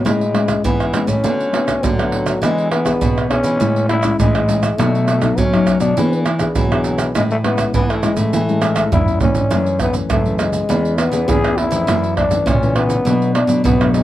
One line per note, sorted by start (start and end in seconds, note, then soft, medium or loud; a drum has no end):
0.04 0.61 A2 soft
0.04 0.55 A2 medium
0.04 0.23 G#3 medium
0.04 0.61 G#3 medium
0.04 0.23 C#4 medium
0.04 0.23 E4 medium
0.04 pandeiro medium
0.04 tamborim medium
0.04 maracas medium
0.04 surdo medium
0.21 pandeiro soft
0.21 maracas soft
0.33 0.89 G#3 medium
0.33 0.89 C#4 medium
0.33 0.89 E4 medium
0.33 pandeiro medium
0.33 tamborim medium
0.48 pandeiro medium
0.48 tamborim medium
0.48 maracas medium
0.48 surdo soft
0.64 1.02 E3 loud
0.64 1.21 E3 medium
0.64 1.10 B3 medium
0.64 pandeiro medium
0.64 maracas medium
0.64 surdo medium
0.80 pandeiro soft
0.80 tamborim medium
0.80 maracas soft
0.93 1.13 G#3 medium
0.93 1.13 C#4 medium
0.93 1.13 E4 medium
0.93 pandeiro medium
0.93 tamborim medium
0.93 maracas medium
0.93 surdo soft
1.07 1.21 A2 medium
1.07 1.86 C#4 medium
1.07 pandeiro medium
1.07 maracas medium
1.07 surdo soft
1.24 1.74 D3 medium
1.24 1.80 D3 medium
1.24 1.49 A3 medium
1.24 1.49 B3 medium
1.24 1.49 F#4 medium
1.24 pandeiro medium
1.24 maracas medium
1.24 surdo medium
1.40 pandeiro soft
1.40 maracas soft
1.52 1.93 A3 medium
1.52 1.93 B3 medium
1.52 1.93 F#4 medium
1.52 pandeiro medium
1.52 tamborim medium
1.68 pandeiro medium
1.68 tamborim medium
1.68 maracas medium
1.68 surdo soft
1.83 2.39 A2 medium
1.83 2.33 D3 medium
1.83 2.44 F#3 medium
1.83 pandeiro medium
1.83 maracas medium
1.83 surdo loud
1.98 2.38 A3 medium
1.98 2.38 B3 medium
1.98 2.38 F#4 medium
1.98 pandeiro soft
1.98 tamborim medium
1.98 maracas soft
2.12 pandeiro medium
2.26 pandeiro medium
2.26 tamborim medium
2.26 maracas medium
2.42 2.92 E3 medium
2.42 2.99 E3 medium
2.42 2.70 G#3 loud
2.42 2.82 B3 medium
2.42 2.82 D4 medium
2.42 2.82 G#4 medium
2.42 pandeiro medium
2.42 tamborim medium
2.42 maracas medium
2.42 surdo medium
2.58 pandeiro soft
2.58 maracas soft
2.71 3.27 B3 medium
2.71 pandeiro medium
2.71 tamborim medium
2.85 3.25 B3 medium
2.85 3.26 D4 medium
2.85 3.26 G#4 medium
2.85 pandeiro medium
2.85 tamborim medium
2.85 maracas medium
2.85 surdo soft
3.01 3.39 B2 loud
3.01 3.58 B2 medium
3.01 pandeiro medium
3.01 maracas medium
3.01 surdo medium
3.18 pandeiro soft
3.18 tamborim medium
3.18 maracas soft
3.30 3.55 B3 medium
3.30 3.86 C#4 medium
3.30 3.56 D4 medium
3.30 3.56 G#4 medium
3.30 pandeiro medium
3.30 tamborim medium
3.30 surdo soft
3.44 3.57 E3 medium
3.44 pandeiro medium
3.44 maracas medium
3.44 surdo soft
3.60 4.10 A2 loud
3.60 4.17 A2 medium
3.60 4.00 G#3 medium
3.60 4.00 C#4 medium
3.60 4.00 E4 medium
3.60 pandeiro medium
3.60 maracas medium
3.60 surdo medium
3.76 pandeiro soft
3.76 maracas soft
3.89 4.17 E4 loud
3.89 pandeiro medium
3.89 tamborim medium
4.03 4.44 G#3 medium
4.03 4.44 C#4 medium
4.03 4.44 E4 medium
4.03 pandeiro medium
4.03 tamborim medium
4.03 maracas medium
4.03 surdo soft
4.20 4.70 A2 medium
4.20 4.76 E3 medium
4.20 4.80 G#3 loud
4.20 pandeiro medium
4.20 maracas medium
4.20 surdo loud
4.35 pandeiro soft
4.35 tamborim medium
4.35 maracas soft
4.48 4.66 G#3 medium
4.48 4.66 C#4 medium
4.48 4.66 E4 medium
4.48 pandeiro medium
4.48 maracas medium
4.63 pandeiro medium
4.63 tamborim medium
4.63 maracas medium
4.78 5.29 B2 medium
4.78 5.35 B2 medium
4.78 5.18 F#3 medium
4.78 5.40 A3 loud
4.78 5.19 A3 medium
4.78 5.19 D#4 medium
4.78 pandeiro medium
4.78 tamborim medium
4.78 maracas medium
4.78 surdo medium
4.95 pandeiro soft
4.95 maracas soft
5.08 pandeiro medium
5.08 tamborim medium
5.08 maracas medium
5.21 5.47 F#3 medium
5.21 5.47 A3 medium
5.21 5.48 D#4 medium
5.21 pandeiro medium
5.21 tamborim medium
5.21 maracas medium
5.21 surdo soft
5.38 5.94 F#2 medium
5.38 5.76 F#3 loud
5.38 5.80 C#4 loud
5.38 pandeiro medium
5.38 maracas medium
5.38 surdo medium
5.53 5.93 F#3 medium
5.53 5.93 A3 medium
5.53 5.93 D#4 medium
5.53 pandeiro soft
5.53 tamborim medium
5.53 maracas soft
5.67 pandeiro medium
5.67 tamborim medium
5.67 maracas medium
5.67 surdo soft
5.80 5.94 B2 medium
5.80 6.25 D4 medium
5.80 pandeiro medium
5.80 maracas medium
5.80 surdo soft
5.97 6.53 E3 medium
5.97 6.47 E3 loud
5.97 6.25 B3 medium
5.97 6.25 D4 medium
5.97 6.25 G#4 medium
5.97 pandeiro medium
5.97 maracas medium
5.97 surdo medium
6.13 pandeiro soft
6.13 maracas soft
6.26 pandeiro medium
6.26 tamborim medium
6.26 maracas medium
6.39 6.65 B3 medium
6.39 6.66 D4 medium
6.39 6.66 G#4 medium
6.39 pandeiro medium
6.39 tamborim medium
6.39 maracas medium
6.39 surdo soft
6.55 7.13 B2 medium
6.55 7.06 E3 medium
6.55 7.11 F#3 medium
6.55 pandeiro medium
6.55 maracas medium
6.55 surdo loud
6.72 7.11 B3 medium
6.72 7.11 D4 medium
6.72 7.11 G#4 medium
6.72 pandeiro soft
6.72 tamborim medium
6.72 maracas soft
6.84 pandeiro medium
6.84 maracas medium
6.98 pandeiro medium
6.98 tamborim medium
6.98 maracas medium
7.15 7.65 A2 medium
7.15 7.72 A2 medium
7.15 7.33 G#3 soft
7.15 7.23 G#3 loud
7.15 7.33 C#4 soft
7.15 7.33 E4 medium
7.15 pandeiro medium
7.15 tamborim medium
7.15 maracas medium
7.15 surdo medium
7.31 7.38 A3 medium
7.31 pandeiro soft
7.31 maracas soft
7.44 7.82 G#3 medium
7.44 7.72 B3 medium
7.44 7.83 C#4 medium
7.44 7.83 E4 medium
7.44 pandeiro medium
7.44 tamborim medium
7.58 pandeiro medium
7.58 tamborim medium
7.58 maracas medium
7.58 surdo soft
7.74 8.12 E3 loud
7.74 8.30 E3 medium
7.74 7.93 B3 loud
7.74 pandeiro medium
7.74 maracas medium
7.74 surdo loud
7.90 8.06 A3 medium
7.90 pandeiro soft
7.90 tamborim medium
7.90 maracas soft
8.03 8.43 G#3 medium
8.03 8.19 G#3 medium
8.03 8.43 C#4 medium
8.03 8.44 E4 medium
8.03 pandeiro medium
8.03 tamborim medium
8.03 maracas medium
8.03 surdo soft
8.17 8.30 A2 medium
8.17 8.92 A3 medium
8.17 pandeiro medium
8.17 maracas medium
8.17 surdo soft
8.33 8.90 A2 medium
8.33 8.83 E3 medium
8.33 pandeiro medium
8.33 maracas medium
8.33 surdo medium
8.49 8.58 G#3 medium
8.49 8.59 C#4 medium
8.49 8.59 E4 medium
8.49 pandeiro soft
8.49 maracas soft
8.62 8.90 G#3 medium
8.62 8.90 C#4 soft
8.62 8.91 E4 medium
8.62 pandeiro medium
8.62 tamborim loud
8.62 maracas medium
8.76 pandeiro medium
8.76 tamborim medium
8.76 maracas medium
8.76 surdo soft
8.92 9.42 G2 medium
8.92 9.49 E3 medium
8.92 9.20 E4 medium
8.92 surdo medium
8.92 pandeiro medium
8.92 maracas medium
8.92 surdo loud
9.08 9.47 C#4 medium
9.08 9.47 E4 medium
9.08 pandeiro soft
9.08 maracas soft
9.21 9.77 C#4 medium
9.21 pandeiro medium
9.21 maracas medium
9.21 surdo medium
9.35 pandeiro medium
9.35 maracas medium
9.35 surdo medium
9.50 10.01 F#2 medium
9.50 10.08 F#2 medium
9.50 9.91 E3 soft
9.50 9.91 A3 medium
9.50 9.91 C#4 medium
9.50 pandeiro medium
9.50 tamborim medium
9.50 maracas medium
9.50 surdo medium
9.66 pandeiro soft
9.66 maracas soft
9.80 9.95 B3 medium
9.80 pandeiro medium
9.80 tamborim medium
9.80 maracas medium
9.80 surdo medium
9.94 10.20 E3 medium
9.94 10.20 A3 medium
9.94 10.20 C#4 medium
9.94 pandeiro medium
9.94 maracas medium
10.10 10.60 F#2 medium
10.10 10.66 C#3 medium
10.10 10.41 A3 medium
10.10 pandeiro medium
10.10 tamborim medium
10.10 maracas medium
10.10 surdo medium
10.26 10.65 E3 medium
10.26 10.65 A3 medium
10.26 10.65 C#4 medium
10.26 pandeiro soft
10.26 maracas soft
10.39 11.00 G#3 medium
10.39 pandeiro medium
10.39 tamborim medium
10.39 maracas medium
10.53 pandeiro medium
10.53 maracas medium
10.69 11.07 E2 medium
10.69 11.26 E3 medium
10.69 10.97 B3 medium
10.69 10.97 C#4 medium
10.69 10.98 G#4 medium
10.69 pandeiro medium
10.69 maracas medium
10.69 surdo medium
10.85 pandeiro soft
10.85 maracas soft
10.98 11.31 B3 medium
10.98 pandeiro medium
10.98 tamborim medium
10.98 maracas medium
11.12 11.25 E2 medium
11.12 11.38 B3 medium
11.12 11.38 C#4 medium
11.12 11.38 G#4 medium
11.12 pandeiro medium
11.12 maracas medium
11.28 11.66 E2 loud
11.28 11.71 E3 medium
11.28 11.59 G#4 loud
11.28 pandeiro medium
11.28 maracas medium
11.28 surdo loud
11.44 11.68 B3 medium
11.44 11.69 C#4 medium
11.44 11.69 G#4 medium
11.44 pandeiro soft
11.44 tamborim medium
11.44 maracas soft
11.57 12.16 E4 loud
11.57 pandeiro medium
11.71 11.84 F2 medium
11.71 12.27 E3 medium
11.71 12.27 A3 medium
11.71 12.27 C#4 medium
11.71 pandeiro medium
11.71 maracas medium
11.87 12.38 F#2 medium
11.87 12.44 F#2 medium
11.87 pandeiro medium
11.87 tamborim medium
11.87 maracas medium
11.87 surdo medium
12.04 pandeiro soft
12.04 maracas soft
12.16 12.49 D4 loud
12.16 pandeiro medium
12.16 tamborim medium
12.16 surdo medium
12.31 12.56 E3 medium
12.31 12.56 A3 medium
12.31 12.57 C#4 medium
12.31 pandeiro medium
12.31 maracas medium
12.46 12.96 A#2 medium
12.46 13.03 C#3 medium
12.46 12.76 C#4 medium
12.46 pandeiro medium
12.46 tamborim medium
12.46 maracas medium
12.46 surdo loud
12.62 13.01 E3 medium
12.62 13.02 A3 medium
12.62 13.02 C#4 medium
12.62 pandeiro soft
12.62 maracas soft
12.76 13.31 B3 medium
12.76 pandeiro medium
12.76 tamborim medium
12.90 pandeiro medium
12.90 maracas medium
13.05 13.43 B2 medium
13.05 13.62 B2 medium
13.05 13.34 F#3 medium
13.05 13.34 A3 medium
13.05 13.34 D4 medium
13.05 pandeiro medium
13.05 maracas medium
13.05 surdo medium
13.22 pandeiro soft
13.22 maracas soft
13.35 13.63 D4 medium
13.35 pandeiro medium
13.35 tamborim medium
13.47 13.61 B2 medium
13.47 13.74 F#3 medium
13.47 13.74 A3 medium
13.47 13.74 D4 medium
13.47 pandeiro medium
13.47 maracas medium
13.64 14.03 F#2 medium
13.64 14.02 B2 loud
13.64 13.95 B3 medium
13.64 pandeiro medium
13.64 maracas medium
13.64 surdo loud
13.80 14.03 F#3 medium
13.80 14.03 A3 medium
13.80 14.03 D4 medium
13.80 pandeiro soft
13.80 tamborim medium
13.80 maracas soft
13.94 14.03 G#3 medium
13.94 pandeiro medium
13.94 maracas medium